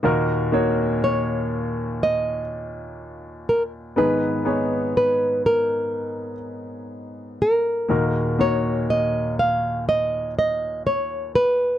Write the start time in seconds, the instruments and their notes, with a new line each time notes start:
0.03 grand piano D#2 A#2 A#3 D#4 F#4 A#4
0.52 grand piano A#3 D#4 F#4 C#5
1.04 nylon-string guitar C#5
2.03 nylon-string guitar D#5
3.49 nylon-string guitar A#4
3.96 grand piano G#2 D#3 B3 D#4 G#4 B4, nylon-string guitar B4
4.45 grand piano B3 D#4 G#4 C#5
4.97 nylon-string guitar B4
5.46 nylon-string guitar A#4
7.42 nylon-string guitar A#4
7.88 grand piano D#2 A#2 A#3 D#4 F#4 A#4
8.13 nylon-string guitar G#4
8.38 grand piano A#3 D#4 F#4 C#5, nylon-string guitar C#5
8.90 nylon-string guitar D#5
9.39 nylon-string guitar F5
9.89 nylon-string guitar D#5
10.39 nylon-string guitar D#5
10.87 nylon-string guitar C#5
11.35 nylon-string guitar B4